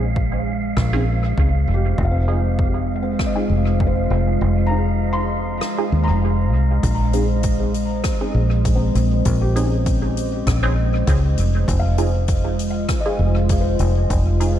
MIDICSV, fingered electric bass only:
0, 0, Header, 1, 2, 480
1, 0, Start_track
1, 0, Tempo, 606061
1, 1568, Time_signature, 4, 2, 24, 8
1, 11558, End_track
2, 0, Start_track
2, 0, Title_t, "Fingered electric bass"
2, 0, Program_c, 0, 33
2, 0, Note_on_c, 0, 34, 92
2, 586, Note_off_c, 0, 34, 0
2, 609, Note_on_c, 0, 34, 100
2, 1067, Note_off_c, 0, 34, 0
2, 1089, Note_on_c, 0, 37, 84
2, 1302, Note_off_c, 0, 37, 0
2, 1327, Note_on_c, 0, 29, 89
2, 1541, Note_off_c, 0, 29, 0
2, 1568, Note_on_c, 0, 29, 98
2, 2507, Note_off_c, 0, 29, 0
2, 2768, Note_on_c, 0, 29, 85
2, 3227, Note_off_c, 0, 29, 0
2, 3250, Note_on_c, 0, 29, 82
2, 3463, Note_off_c, 0, 29, 0
2, 3493, Note_on_c, 0, 29, 92
2, 4430, Note_off_c, 0, 29, 0
2, 4691, Note_on_c, 0, 39, 96
2, 4817, Note_on_c, 0, 29, 97
2, 4829, Note_off_c, 0, 39, 0
2, 5170, Note_off_c, 0, 29, 0
2, 5170, Note_on_c, 0, 36, 79
2, 5382, Note_off_c, 0, 36, 0
2, 5411, Note_on_c, 0, 34, 99
2, 6349, Note_off_c, 0, 34, 0
2, 6609, Note_on_c, 0, 34, 88
2, 7067, Note_off_c, 0, 34, 0
2, 7089, Note_on_c, 0, 34, 84
2, 7302, Note_off_c, 0, 34, 0
2, 7332, Note_on_c, 0, 34, 98
2, 8269, Note_off_c, 0, 34, 0
2, 8290, Note_on_c, 0, 34, 100
2, 8748, Note_off_c, 0, 34, 0
2, 8770, Note_on_c, 0, 37, 93
2, 8983, Note_off_c, 0, 37, 0
2, 9007, Note_on_c, 0, 29, 100
2, 9221, Note_off_c, 0, 29, 0
2, 9250, Note_on_c, 0, 29, 100
2, 10188, Note_off_c, 0, 29, 0
2, 10445, Note_on_c, 0, 29, 93
2, 10906, Note_off_c, 0, 29, 0
2, 10926, Note_on_c, 0, 29, 82
2, 11141, Note_off_c, 0, 29, 0
2, 11167, Note_on_c, 0, 29, 98
2, 11558, Note_off_c, 0, 29, 0
2, 11558, End_track
0, 0, End_of_file